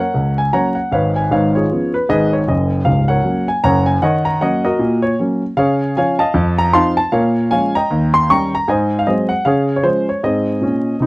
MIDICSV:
0, 0, Header, 1, 2, 480
1, 0, Start_track
1, 0, Key_signature, 6, "major"
1, 0, Tempo, 387847
1, 1146, Time_signature, 4, 2, 24, 8
1, 6911, Key_signature, -5, "major"
1, 13694, End_track
2, 0, Start_track
2, 0, Title_t, "Grand piano"
2, 0, Program_c, 0, 0
2, 0, Note_on_c, 0, 70, 57
2, 0, Note_on_c, 0, 73, 56
2, 0, Note_on_c, 0, 78, 81
2, 176, Note_on_c, 0, 37, 64
2, 437, Note_off_c, 0, 70, 0
2, 437, Note_off_c, 0, 73, 0
2, 467, Note_off_c, 0, 78, 0
2, 470, Note_on_c, 0, 80, 86
2, 589, Note_off_c, 0, 37, 0
2, 650, Note_on_c, 0, 54, 46
2, 657, Note_on_c, 0, 82, 89
2, 662, Note_on_c, 0, 58, 38
2, 663, Note_off_c, 0, 80, 0
2, 664, Note_on_c, 0, 78, 69
2, 665, Note_on_c, 0, 61, 46
2, 671, Note_on_c, 0, 73, 68
2, 909, Note_off_c, 0, 78, 0
2, 919, Note_off_c, 0, 54, 0
2, 928, Note_off_c, 0, 58, 0
2, 928, Note_on_c, 0, 78, 74
2, 929, Note_off_c, 0, 61, 0
2, 940, Note_off_c, 0, 73, 0
2, 953, Note_off_c, 0, 82, 0
2, 1132, Note_off_c, 0, 78, 0
2, 1133, Note_on_c, 0, 32, 65
2, 1140, Note_on_c, 0, 44, 60
2, 1142, Note_on_c, 0, 77, 79
2, 1156, Note_on_c, 0, 73, 63
2, 1158, Note_on_c, 0, 71, 64
2, 1385, Control_c, 0, 64, 127
2, 1422, Note_off_c, 0, 73, 0
2, 1423, Note_off_c, 0, 71, 0
2, 1434, Note_on_c, 0, 80, 76
2, 1436, Note_off_c, 0, 77, 0
2, 1523, Note_off_c, 0, 32, 0
2, 1527, Note_off_c, 0, 44, 0
2, 1618, Note_on_c, 0, 32, 61
2, 1623, Note_on_c, 0, 44, 66
2, 1625, Note_off_c, 0, 80, 0
2, 1631, Note_on_c, 0, 77, 81
2, 1642, Control_c, 0, 64, 0
2, 1642, Note_on_c, 0, 73, 66
2, 1650, Note_on_c, 0, 71, 59
2, 1900, Note_off_c, 0, 73, 0
2, 1910, Note_off_c, 0, 71, 0
2, 1919, Note_on_c, 0, 73, 74
2, 1920, Note_off_c, 0, 77, 0
2, 1933, Note_on_c, 0, 65, 55
2, 1939, Note_on_c, 0, 68, 57
2, 2006, Note_off_c, 0, 32, 0
2, 2009, Note_off_c, 0, 44, 0
2, 2115, Note_on_c, 0, 59, 43
2, 2123, Note_on_c, 0, 53, 42
2, 2127, Note_on_c, 0, 61, 39
2, 2373, Note_off_c, 0, 65, 0
2, 2376, Note_off_c, 0, 68, 0
2, 2377, Note_off_c, 0, 59, 0
2, 2383, Note_off_c, 0, 53, 0
2, 2386, Note_off_c, 0, 61, 0
2, 2399, Note_off_c, 0, 73, 0
2, 2400, Note_on_c, 0, 71, 75
2, 2586, Note_off_c, 0, 71, 0
2, 2587, Note_on_c, 0, 44, 69
2, 2594, Note_on_c, 0, 75, 98
2, 2599, Note_on_c, 0, 32, 68
2, 2602, Note_on_c, 0, 68, 70
2, 2605, Note_on_c, 0, 71, 70
2, 2866, Note_off_c, 0, 68, 0
2, 2868, Note_off_c, 0, 71, 0
2, 2882, Note_off_c, 0, 75, 0
2, 2884, Note_on_c, 0, 73, 69
2, 2972, Note_off_c, 0, 44, 0
2, 2979, Note_off_c, 0, 32, 0
2, 3065, Note_on_c, 0, 42, 62
2, 3067, Note_on_c, 0, 30, 68
2, 3071, Note_off_c, 0, 73, 0
2, 3076, Note_on_c, 0, 75, 72
2, 3311, Control_c, 0, 64, 127
2, 3451, Note_off_c, 0, 42, 0
2, 3452, Note_off_c, 0, 30, 0
2, 3526, Note_on_c, 0, 25, 66
2, 3526, Note_on_c, 0, 77, 82
2, 3534, Note_on_c, 0, 37, 60
2, 3553, Note_off_c, 0, 75, 0
2, 3560, Control_c, 0, 64, 0
2, 3813, Note_on_c, 0, 78, 91
2, 3829, Note_off_c, 0, 77, 0
2, 3832, Note_on_c, 0, 73, 66
2, 3834, Note_on_c, 0, 70, 60
2, 3919, Note_off_c, 0, 25, 0
2, 3924, Note_off_c, 0, 37, 0
2, 4005, Note_on_c, 0, 54, 47
2, 4008, Note_on_c, 0, 61, 42
2, 4013, Note_on_c, 0, 58, 42
2, 4276, Note_off_c, 0, 54, 0
2, 4278, Note_off_c, 0, 61, 0
2, 4281, Note_off_c, 0, 58, 0
2, 4282, Note_off_c, 0, 73, 0
2, 4284, Note_off_c, 0, 70, 0
2, 4307, Note_off_c, 0, 78, 0
2, 4308, Note_on_c, 0, 80, 85
2, 4499, Note_on_c, 0, 30, 70
2, 4500, Note_on_c, 0, 82, 109
2, 4503, Note_off_c, 0, 80, 0
2, 4504, Note_on_c, 0, 42, 76
2, 4513, Note_on_c, 0, 78, 73
2, 4518, Note_on_c, 0, 73, 77
2, 4778, Note_on_c, 0, 80, 89
2, 4782, Note_off_c, 0, 78, 0
2, 4784, Note_off_c, 0, 73, 0
2, 4796, Note_off_c, 0, 82, 0
2, 4887, Note_off_c, 0, 30, 0
2, 4890, Note_off_c, 0, 42, 0
2, 4977, Note_on_c, 0, 78, 86
2, 4978, Note_off_c, 0, 80, 0
2, 4983, Note_on_c, 0, 51, 77
2, 4988, Note_on_c, 0, 73, 72
2, 4995, Note_on_c, 0, 75, 74
2, 5229, Control_c, 0, 64, 127
2, 5259, Note_off_c, 0, 73, 0
2, 5261, Note_on_c, 0, 82, 91
2, 5263, Note_off_c, 0, 75, 0
2, 5274, Note_off_c, 0, 78, 0
2, 5394, Note_off_c, 0, 51, 0
2, 5460, Note_off_c, 0, 82, 0
2, 5461, Note_on_c, 0, 78, 87
2, 5466, Note_on_c, 0, 54, 49
2, 5470, Note_on_c, 0, 58, 45
2, 5472, Note_on_c, 0, 61, 51
2, 5472, Note_on_c, 0, 73, 67
2, 5475, Note_on_c, 0, 75, 70
2, 5483, Control_c, 0, 64, 0
2, 5731, Note_off_c, 0, 54, 0
2, 5732, Note_off_c, 0, 75, 0
2, 5734, Note_off_c, 0, 58, 0
2, 5735, Note_off_c, 0, 61, 0
2, 5742, Note_off_c, 0, 73, 0
2, 5751, Note_on_c, 0, 75, 80
2, 5757, Note_off_c, 0, 78, 0
2, 5759, Note_on_c, 0, 66, 69
2, 5762, Note_on_c, 0, 70, 71
2, 5929, Note_on_c, 0, 46, 76
2, 6206, Note_off_c, 0, 66, 0
2, 6208, Note_off_c, 0, 70, 0
2, 6218, Note_on_c, 0, 73, 85
2, 6236, Note_off_c, 0, 75, 0
2, 6346, Note_off_c, 0, 46, 0
2, 6419, Note_off_c, 0, 73, 0
2, 6429, Note_on_c, 0, 54, 44
2, 6436, Note_on_c, 0, 58, 48
2, 6442, Note_on_c, 0, 61, 54
2, 6693, Note_off_c, 0, 54, 0
2, 6698, Note_off_c, 0, 58, 0
2, 6703, Note_off_c, 0, 61, 0
2, 6890, Note_on_c, 0, 49, 76
2, 6892, Note_on_c, 0, 77, 94
2, 6910, Note_on_c, 0, 68, 65
2, 6913, Note_on_c, 0, 73, 75
2, 7146, Control_c, 0, 64, 127
2, 7307, Note_off_c, 0, 49, 0
2, 7357, Note_off_c, 0, 68, 0
2, 7358, Note_off_c, 0, 73, 0
2, 7381, Note_off_c, 0, 77, 0
2, 7387, Note_on_c, 0, 61, 52
2, 7387, Note_on_c, 0, 80, 85
2, 7395, Note_on_c, 0, 53, 49
2, 7400, Note_on_c, 0, 77, 71
2, 7406, Control_c, 0, 64, 0
2, 7407, Note_on_c, 0, 73, 74
2, 7650, Note_off_c, 0, 77, 0
2, 7652, Note_off_c, 0, 61, 0
2, 7658, Note_off_c, 0, 53, 0
2, 7662, Note_on_c, 0, 81, 94
2, 7668, Note_on_c, 0, 77, 72
2, 7670, Note_off_c, 0, 73, 0
2, 7675, Note_on_c, 0, 75, 75
2, 7679, Note_off_c, 0, 80, 0
2, 7848, Note_on_c, 0, 41, 92
2, 8108, Control_c, 0, 64, 127
2, 8121, Note_off_c, 0, 77, 0
2, 8125, Note_off_c, 0, 75, 0
2, 8150, Note_on_c, 0, 82, 108
2, 8152, Note_off_c, 0, 81, 0
2, 8265, Note_off_c, 0, 41, 0
2, 8335, Note_on_c, 0, 84, 110
2, 8336, Note_on_c, 0, 60, 54
2, 8337, Note_on_c, 0, 53, 49
2, 8343, Note_on_c, 0, 81, 78
2, 8345, Note_off_c, 0, 82, 0
2, 8345, Note_on_c, 0, 63, 65
2, 8349, Note_on_c, 0, 77, 82
2, 8365, Control_c, 0, 64, 0
2, 8604, Note_off_c, 0, 60, 0
2, 8605, Note_off_c, 0, 53, 0
2, 8607, Note_off_c, 0, 81, 0
2, 8610, Note_off_c, 0, 63, 0
2, 8620, Note_off_c, 0, 77, 0
2, 8626, Note_on_c, 0, 81, 101
2, 8634, Note_off_c, 0, 84, 0
2, 8812, Note_on_c, 0, 77, 87
2, 8814, Note_on_c, 0, 46, 86
2, 8821, Note_on_c, 0, 70, 63
2, 8822, Note_off_c, 0, 81, 0
2, 8830, Note_on_c, 0, 73, 73
2, 9067, Control_c, 0, 64, 127
2, 9229, Note_off_c, 0, 46, 0
2, 9272, Note_off_c, 0, 70, 0
2, 9276, Note_off_c, 0, 73, 0
2, 9290, Note_off_c, 0, 77, 0
2, 9292, Note_on_c, 0, 80, 99
2, 9294, Note_on_c, 0, 53, 52
2, 9303, Note_on_c, 0, 56, 46
2, 9307, Note_on_c, 0, 61, 44
2, 9309, Note_on_c, 0, 77, 77
2, 9310, Note_on_c, 0, 73, 71
2, 9326, Control_c, 0, 64, 0
2, 9563, Note_off_c, 0, 53, 0
2, 9569, Note_off_c, 0, 56, 0
2, 9572, Note_off_c, 0, 61, 0
2, 9580, Note_off_c, 0, 77, 0
2, 9581, Note_off_c, 0, 73, 0
2, 9592, Note_off_c, 0, 80, 0
2, 9595, Note_on_c, 0, 82, 101
2, 9611, Note_on_c, 0, 79, 76
2, 9613, Note_on_c, 0, 75, 69
2, 9786, Note_on_c, 0, 39, 85
2, 10021, Control_c, 0, 64, 127
2, 10053, Note_off_c, 0, 79, 0
2, 10054, Note_off_c, 0, 75, 0
2, 10072, Note_on_c, 0, 84, 110
2, 10078, Note_off_c, 0, 82, 0
2, 10195, Note_off_c, 0, 39, 0
2, 10266, Note_off_c, 0, 84, 0
2, 10274, Note_on_c, 0, 85, 114
2, 10275, Note_on_c, 0, 51, 46
2, 10280, Note_on_c, 0, 55, 50
2, 10282, Control_c, 0, 64, 0
2, 10283, Note_on_c, 0, 61, 53
2, 10283, Note_on_c, 0, 79, 80
2, 10292, Note_on_c, 0, 82, 81
2, 10538, Note_off_c, 0, 51, 0
2, 10541, Note_off_c, 0, 55, 0
2, 10543, Note_off_c, 0, 61, 0
2, 10547, Note_off_c, 0, 79, 0
2, 10552, Note_off_c, 0, 82, 0
2, 10563, Note_off_c, 0, 85, 0
2, 10578, Note_on_c, 0, 82, 98
2, 10742, Note_on_c, 0, 44, 78
2, 10748, Note_on_c, 0, 80, 81
2, 10758, Note_off_c, 0, 82, 0
2, 10762, Note_on_c, 0, 72, 72
2, 10762, Note_on_c, 0, 75, 76
2, 10982, Control_c, 0, 64, 127
2, 11114, Note_off_c, 0, 72, 0
2, 11114, Note_off_c, 0, 75, 0
2, 11123, Note_on_c, 0, 77, 82
2, 11134, Note_off_c, 0, 80, 0
2, 11153, Note_off_c, 0, 44, 0
2, 11223, Note_on_c, 0, 75, 72
2, 11224, Note_off_c, 0, 77, 0
2, 11226, Note_on_c, 0, 54, 45
2, 11234, Note_on_c, 0, 56, 51
2, 11236, Note_on_c, 0, 60, 48
2, 11241, Note_on_c, 0, 72, 51
2, 11244, Note_on_c, 0, 68, 49
2, 11247, Control_c, 0, 64, 0
2, 11491, Note_off_c, 0, 54, 0
2, 11493, Note_on_c, 0, 78, 88
2, 11497, Note_off_c, 0, 56, 0
2, 11498, Note_off_c, 0, 60, 0
2, 11506, Note_off_c, 0, 72, 0
2, 11508, Note_off_c, 0, 68, 0
2, 11517, Note_off_c, 0, 75, 0
2, 11695, Note_on_c, 0, 77, 90
2, 11696, Note_off_c, 0, 78, 0
2, 11703, Note_on_c, 0, 49, 80
2, 11721, Note_on_c, 0, 73, 69
2, 11722, Note_on_c, 0, 68, 70
2, 11948, Control_c, 0, 64, 127
2, 12065, Note_off_c, 0, 73, 0
2, 12074, Note_off_c, 0, 68, 0
2, 12084, Note_on_c, 0, 73, 77
2, 12087, Note_off_c, 0, 77, 0
2, 12113, Note_off_c, 0, 49, 0
2, 12172, Note_on_c, 0, 53, 52
2, 12173, Note_on_c, 0, 72, 89
2, 12178, Note_on_c, 0, 61, 49
2, 12181, Note_on_c, 0, 56, 49
2, 12183, Note_off_c, 0, 73, 0
2, 12203, Control_c, 0, 64, 0
2, 12440, Note_off_c, 0, 53, 0
2, 12445, Note_off_c, 0, 61, 0
2, 12447, Note_off_c, 0, 56, 0
2, 12471, Note_off_c, 0, 72, 0
2, 12488, Note_on_c, 0, 73, 70
2, 12666, Note_on_c, 0, 44, 56
2, 12673, Note_off_c, 0, 73, 0
2, 12673, Note_on_c, 0, 75, 78
2, 12681, Note_on_c, 0, 60, 59
2, 12683, Note_on_c, 0, 72, 48
2, 12689, Note_on_c, 0, 68, 50
2, 12909, Control_c, 0, 64, 127
2, 13051, Note_off_c, 0, 44, 0
2, 13060, Note_off_c, 0, 60, 0
2, 13132, Note_on_c, 0, 46, 56
2, 13155, Note_on_c, 0, 61, 64
2, 13161, Control_c, 0, 64, 0
2, 13522, Note_off_c, 0, 46, 0
2, 13536, Note_off_c, 0, 61, 0
2, 13615, Note_on_c, 0, 48, 57
2, 13638, Note_on_c, 0, 63, 70
2, 13694, Note_off_c, 0, 48, 0
2, 13694, Note_off_c, 0, 63, 0
2, 13694, Note_off_c, 0, 68, 0
2, 13694, Note_off_c, 0, 72, 0
2, 13694, Note_off_c, 0, 75, 0
2, 13694, End_track
0, 0, End_of_file